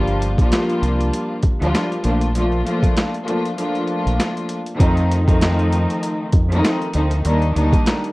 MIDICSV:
0, 0, Header, 1, 4, 480
1, 0, Start_track
1, 0, Tempo, 612245
1, 1842, Time_signature, 4, 2, 24, 8
1, 6368, End_track
2, 0, Start_track
2, 0, Title_t, "String section"
2, 0, Program_c, 0, 48
2, 0, Note_on_c, 0, 53, 89
2, 0, Note_on_c, 0, 55, 89
2, 0, Note_on_c, 0, 58, 83
2, 0, Note_on_c, 0, 62, 91
2, 0, Note_on_c, 0, 65, 105
2, 269, Note_off_c, 0, 53, 0
2, 271, Note_off_c, 0, 55, 0
2, 273, Note_off_c, 0, 58, 0
2, 275, Note_off_c, 0, 62, 0
2, 277, Note_off_c, 0, 65, 0
2, 305, Note_on_c, 0, 53, 96
2, 309, Note_on_c, 0, 55, 89
2, 314, Note_on_c, 0, 58, 95
2, 318, Note_on_c, 0, 62, 93
2, 323, Note_on_c, 0, 65, 107
2, 1068, Note_off_c, 0, 53, 0
2, 1070, Note_off_c, 0, 55, 0
2, 1072, Note_off_c, 0, 58, 0
2, 1074, Note_off_c, 0, 62, 0
2, 1077, Note_off_c, 0, 65, 0
2, 1258, Note_on_c, 0, 53, 98
2, 1262, Note_on_c, 0, 55, 81
2, 1267, Note_on_c, 0, 58, 84
2, 1271, Note_on_c, 0, 62, 94
2, 1275, Note_on_c, 0, 65, 111
2, 1576, Note_off_c, 0, 53, 0
2, 1579, Note_off_c, 0, 55, 0
2, 1581, Note_off_c, 0, 58, 0
2, 1583, Note_off_c, 0, 62, 0
2, 1585, Note_off_c, 0, 65, 0
2, 1594, Note_on_c, 0, 53, 77
2, 1598, Note_on_c, 0, 57, 73
2, 1602, Note_on_c, 0, 58, 68
2, 1607, Note_on_c, 0, 62, 71
2, 1611, Note_on_c, 0, 65, 87
2, 1822, Note_off_c, 0, 53, 0
2, 1824, Note_off_c, 0, 57, 0
2, 1826, Note_off_c, 0, 58, 0
2, 1829, Note_off_c, 0, 62, 0
2, 1831, Note_off_c, 0, 65, 0
2, 1834, Note_on_c, 0, 53, 93
2, 1839, Note_on_c, 0, 57, 88
2, 1843, Note_on_c, 0, 58, 86
2, 1847, Note_on_c, 0, 62, 84
2, 1852, Note_on_c, 0, 65, 115
2, 2062, Note_off_c, 0, 53, 0
2, 2065, Note_off_c, 0, 57, 0
2, 2067, Note_off_c, 0, 58, 0
2, 2069, Note_off_c, 0, 62, 0
2, 2071, Note_off_c, 0, 65, 0
2, 2075, Note_on_c, 0, 53, 88
2, 2079, Note_on_c, 0, 57, 86
2, 2083, Note_on_c, 0, 58, 85
2, 2088, Note_on_c, 0, 62, 85
2, 2092, Note_on_c, 0, 65, 107
2, 2425, Note_off_c, 0, 53, 0
2, 2427, Note_off_c, 0, 57, 0
2, 2429, Note_off_c, 0, 58, 0
2, 2431, Note_off_c, 0, 62, 0
2, 2433, Note_off_c, 0, 65, 0
2, 2544, Note_on_c, 0, 53, 99
2, 2549, Note_on_c, 0, 57, 93
2, 2553, Note_on_c, 0, 58, 83
2, 2557, Note_on_c, 0, 62, 87
2, 2562, Note_on_c, 0, 65, 101
2, 2777, Note_off_c, 0, 53, 0
2, 2780, Note_off_c, 0, 57, 0
2, 2782, Note_off_c, 0, 58, 0
2, 2784, Note_off_c, 0, 62, 0
2, 2786, Note_off_c, 0, 65, 0
2, 2789, Note_on_c, 0, 53, 98
2, 2793, Note_on_c, 0, 57, 84
2, 2796, Note_on_c, 0, 58, 87
2, 2802, Note_on_c, 0, 62, 93
2, 2806, Note_on_c, 0, 65, 111
2, 3577, Note_off_c, 0, 53, 0
2, 3579, Note_off_c, 0, 57, 0
2, 3581, Note_off_c, 0, 58, 0
2, 3584, Note_off_c, 0, 62, 0
2, 3585, Note_off_c, 0, 65, 0
2, 3737, Note_on_c, 0, 51, 93
2, 3741, Note_on_c, 0, 53, 95
2, 3745, Note_on_c, 0, 57, 87
2, 3750, Note_on_c, 0, 60, 89
2, 3754, Note_on_c, 0, 63, 112
2, 4096, Note_off_c, 0, 51, 0
2, 4098, Note_off_c, 0, 53, 0
2, 4100, Note_off_c, 0, 57, 0
2, 4102, Note_off_c, 0, 60, 0
2, 4104, Note_off_c, 0, 63, 0
2, 4128, Note_on_c, 0, 51, 96
2, 4132, Note_on_c, 0, 53, 94
2, 4137, Note_on_c, 0, 57, 99
2, 4141, Note_on_c, 0, 60, 92
2, 4146, Note_on_c, 0, 63, 107
2, 4899, Note_off_c, 0, 51, 0
2, 4901, Note_off_c, 0, 53, 0
2, 4904, Note_off_c, 0, 57, 0
2, 4906, Note_off_c, 0, 60, 0
2, 4908, Note_off_c, 0, 63, 0
2, 5109, Note_on_c, 0, 51, 98
2, 5113, Note_on_c, 0, 53, 100
2, 5118, Note_on_c, 0, 57, 93
2, 5122, Note_on_c, 0, 60, 97
2, 5126, Note_on_c, 0, 63, 117
2, 5422, Note_off_c, 0, 51, 0
2, 5424, Note_off_c, 0, 53, 0
2, 5427, Note_off_c, 0, 57, 0
2, 5428, Note_off_c, 0, 60, 0
2, 5431, Note_off_c, 0, 63, 0
2, 5438, Note_on_c, 0, 51, 76
2, 5442, Note_on_c, 0, 53, 76
2, 5446, Note_on_c, 0, 57, 74
2, 5451, Note_on_c, 0, 60, 80
2, 5455, Note_on_c, 0, 63, 85
2, 5664, Note_off_c, 0, 51, 0
2, 5666, Note_off_c, 0, 53, 0
2, 5668, Note_off_c, 0, 57, 0
2, 5671, Note_off_c, 0, 60, 0
2, 5673, Note_off_c, 0, 63, 0
2, 5677, Note_on_c, 0, 51, 104
2, 5681, Note_on_c, 0, 55, 90
2, 5686, Note_on_c, 0, 58, 94
2, 5689, Note_on_c, 0, 62, 95
2, 5694, Note_on_c, 0, 63, 113
2, 5904, Note_off_c, 0, 51, 0
2, 5906, Note_off_c, 0, 55, 0
2, 5908, Note_off_c, 0, 58, 0
2, 5910, Note_off_c, 0, 62, 0
2, 5912, Note_off_c, 0, 63, 0
2, 5913, Note_on_c, 0, 51, 98
2, 5918, Note_on_c, 0, 55, 90
2, 5922, Note_on_c, 0, 58, 88
2, 5927, Note_on_c, 0, 62, 89
2, 5931, Note_on_c, 0, 63, 109
2, 6264, Note_off_c, 0, 51, 0
2, 6266, Note_off_c, 0, 55, 0
2, 6268, Note_off_c, 0, 58, 0
2, 6271, Note_off_c, 0, 62, 0
2, 6272, Note_off_c, 0, 63, 0
2, 6368, End_track
3, 0, Start_track
3, 0, Title_t, "Fingered electric bass"
3, 0, Program_c, 1, 33
3, 0, Note_on_c, 1, 31, 111
3, 271, Note_off_c, 1, 31, 0
3, 300, Note_on_c, 1, 34, 94
3, 393, Note_off_c, 1, 34, 0
3, 646, Note_on_c, 1, 36, 90
3, 862, Note_off_c, 1, 36, 0
3, 1266, Note_on_c, 1, 38, 89
3, 1356, Note_off_c, 1, 38, 0
3, 1605, Note_on_c, 1, 34, 105
3, 2052, Note_off_c, 1, 34, 0
3, 3185, Note_on_c, 1, 34, 91
3, 3275, Note_off_c, 1, 34, 0
3, 3764, Note_on_c, 1, 41, 105
3, 4591, Note_off_c, 1, 41, 0
3, 4964, Note_on_c, 1, 41, 98
3, 5182, Note_off_c, 1, 41, 0
3, 5446, Note_on_c, 1, 38, 95
3, 5663, Note_off_c, 1, 38, 0
3, 5686, Note_on_c, 1, 39, 114
3, 5903, Note_off_c, 1, 39, 0
3, 5927, Note_on_c, 1, 38, 94
3, 6051, Note_off_c, 1, 38, 0
3, 6368, End_track
4, 0, Start_track
4, 0, Title_t, "Drums"
4, 57, Note_on_c, 9, 42, 36
4, 136, Note_off_c, 9, 42, 0
4, 171, Note_on_c, 9, 42, 74
4, 249, Note_off_c, 9, 42, 0
4, 298, Note_on_c, 9, 36, 86
4, 304, Note_on_c, 9, 42, 57
4, 377, Note_off_c, 9, 36, 0
4, 382, Note_off_c, 9, 42, 0
4, 406, Note_on_c, 9, 42, 89
4, 413, Note_on_c, 9, 38, 116
4, 420, Note_on_c, 9, 39, 97
4, 484, Note_off_c, 9, 42, 0
4, 491, Note_off_c, 9, 38, 0
4, 499, Note_off_c, 9, 39, 0
4, 545, Note_on_c, 9, 42, 35
4, 624, Note_off_c, 9, 42, 0
4, 651, Note_on_c, 9, 42, 81
4, 729, Note_off_c, 9, 42, 0
4, 789, Note_on_c, 9, 42, 50
4, 867, Note_off_c, 9, 42, 0
4, 890, Note_on_c, 9, 42, 94
4, 968, Note_off_c, 9, 42, 0
4, 1118, Note_on_c, 9, 42, 66
4, 1123, Note_on_c, 9, 36, 89
4, 1197, Note_off_c, 9, 42, 0
4, 1201, Note_off_c, 9, 36, 0
4, 1271, Note_on_c, 9, 42, 49
4, 1350, Note_off_c, 9, 42, 0
4, 1371, Note_on_c, 9, 38, 94
4, 1373, Note_on_c, 9, 42, 93
4, 1378, Note_on_c, 9, 39, 75
4, 1449, Note_off_c, 9, 38, 0
4, 1452, Note_off_c, 9, 42, 0
4, 1456, Note_off_c, 9, 39, 0
4, 1506, Note_on_c, 9, 42, 36
4, 1585, Note_off_c, 9, 42, 0
4, 1599, Note_on_c, 9, 42, 71
4, 1678, Note_off_c, 9, 42, 0
4, 1736, Note_on_c, 9, 42, 54
4, 1815, Note_off_c, 9, 42, 0
4, 1845, Note_on_c, 9, 42, 98
4, 1923, Note_off_c, 9, 42, 0
4, 1978, Note_on_c, 9, 42, 34
4, 2056, Note_off_c, 9, 42, 0
4, 2091, Note_on_c, 9, 42, 72
4, 2169, Note_off_c, 9, 42, 0
4, 2218, Note_on_c, 9, 36, 88
4, 2224, Note_on_c, 9, 42, 59
4, 2297, Note_off_c, 9, 36, 0
4, 2302, Note_off_c, 9, 42, 0
4, 2326, Note_on_c, 9, 42, 87
4, 2333, Note_on_c, 9, 38, 114
4, 2340, Note_on_c, 9, 39, 91
4, 2404, Note_off_c, 9, 42, 0
4, 2411, Note_off_c, 9, 38, 0
4, 2419, Note_off_c, 9, 39, 0
4, 2464, Note_on_c, 9, 42, 35
4, 2543, Note_off_c, 9, 42, 0
4, 2570, Note_on_c, 9, 42, 81
4, 2648, Note_off_c, 9, 42, 0
4, 2708, Note_on_c, 9, 42, 49
4, 2786, Note_off_c, 9, 42, 0
4, 2809, Note_on_c, 9, 42, 90
4, 2887, Note_off_c, 9, 42, 0
4, 2941, Note_on_c, 9, 42, 35
4, 3019, Note_off_c, 9, 42, 0
4, 3037, Note_on_c, 9, 42, 67
4, 3116, Note_off_c, 9, 42, 0
4, 3191, Note_on_c, 9, 42, 49
4, 3269, Note_off_c, 9, 42, 0
4, 3290, Note_on_c, 9, 38, 91
4, 3293, Note_on_c, 9, 42, 91
4, 3298, Note_on_c, 9, 39, 73
4, 3369, Note_off_c, 9, 38, 0
4, 3371, Note_off_c, 9, 42, 0
4, 3376, Note_off_c, 9, 39, 0
4, 3426, Note_on_c, 9, 42, 37
4, 3504, Note_off_c, 9, 42, 0
4, 3519, Note_on_c, 9, 42, 72
4, 3598, Note_off_c, 9, 42, 0
4, 3656, Note_on_c, 9, 42, 54
4, 3734, Note_off_c, 9, 42, 0
4, 3762, Note_on_c, 9, 36, 114
4, 3764, Note_on_c, 9, 42, 107
4, 3840, Note_off_c, 9, 36, 0
4, 3842, Note_off_c, 9, 42, 0
4, 3897, Note_on_c, 9, 42, 36
4, 3975, Note_off_c, 9, 42, 0
4, 4010, Note_on_c, 9, 42, 74
4, 4089, Note_off_c, 9, 42, 0
4, 4138, Note_on_c, 9, 36, 91
4, 4143, Note_on_c, 9, 42, 62
4, 4216, Note_off_c, 9, 36, 0
4, 4222, Note_off_c, 9, 42, 0
4, 4245, Note_on_c, 9, 42, 93
4, 4252, Note_on_c, 9, 38, 123
4, 4260, Note_on_c, 9, 39, 101
4, 4324, Note_off_c, 9, 42, 0
4, 4331, Note_off_c, 9, 38, 0
4, 4338, Note_off_c, 9, 39, 0
4, 4384, Note_on_c, 9, 42, 35
4, 4462, Note_off_c, 9, 42, 0
4, 4489, Note_on_c, 9, 42, 84
4, 4567, Note_off_c, 9, 42, 0
4, 4627, Note_on_c, 9, 42, 51
4, 4705, Note_off_c, 9, 42, 0
4, 4727, Note_on_c, 9, 42, 97
4, 4805, Note_off_c, 9, 42, 0
4, 4957, Note_on_c, 9, 42, 70
4, 4962, Note_on_c, 9, 36, 95
4, 5036, Note_off_c, 9, 42, 0
4, 5041, Note_off_c, 9, 36, 0
4, 5111, Note_on_c, 9, 42, 50
4, 5189, Note_off_c, 9, 42, 0
4, 5209, Note_on_c, 9, 38, 100
4, 5212, Note_on_c, 9, 42, 94
4, 5217, Note_on_c, 9, 39, 75
4, 5288, Note_off_c, 9, 38, 0
4, 5290, Note_off_c, 9, 42, 0
4, 5295, Note_off_c, 9, 39, 0
4, 5345, Note_on_c, 9, 42, 38
4, 5423, Note_off_c, 9, 42, 0
4, 5437, Note_on_c, 9, 42, 73
4, 5516, Note_off_c, 9, 42, 0
4, 5575, Note_on_c, 9, 42, 56
4, 5653, Note_off_c, 9, 42, 0
4, 5683, Note_on_c, 9, 42, 105
4, 5761, Note_off_c, 9, 42, 0
4, 5817, Note_on_c, 9, 42, 37
4, 5895, Note_off_c, 9, 42, 0
4, 5930, Note_on_c, 9, 42, 74
4, 6009, Note_off_c, 9, 42, 0
4, 6058, Note_on_c, 9, 36, 90
4, 6063, Note_on_c, 9, 42, 59
4, 6136, Note_off_c, 9, 36, 0
4, 6142, Note_off_c, 9, 42, 0
4, 6165, Note_on_c, 9, 42, 93
4, 6172, Note_on_c, 9, 38, 126
4, 6179, Note_on_c, 9, 39, 99
4, 6243, Note_off_c, 9, 42, 0
4, 6250, Note_off_c, 9, 38, 0
4, 6258, Note_off_c, 9, 39, 0
4, 6304, Note_on_c, 9, 42, 36
4, 6368, Note_off_c, 9, 42, 0
4, 6368, End_track
0, 0, End_of_file